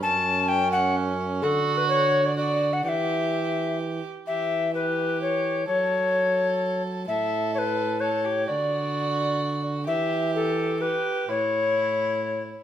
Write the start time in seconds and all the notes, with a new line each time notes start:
0.03 F#2 C#4 A5
0.48 G5
0.72 F#5
1.42 D3 F#4 A4
1.77 B4
1.89 C#5
2.26 D5
2.37 F#4 D5
2.73 F#5
2.84 E3 G4 F#5
2.89 E5
4.27 E3 G4 E5
4.75 G4 B4
5.22 C#5
5.67 F#3 A4 C#5
7.08 A2 A4 E5
7.54 C#5
7.58 B4
8.01 A4 C#5
8.25 G4
8.47 D3 F#4 D5
9.87 E3 G4 E5
10.35 A4
10.81 G4 B4
11.28 A2 E4 C#5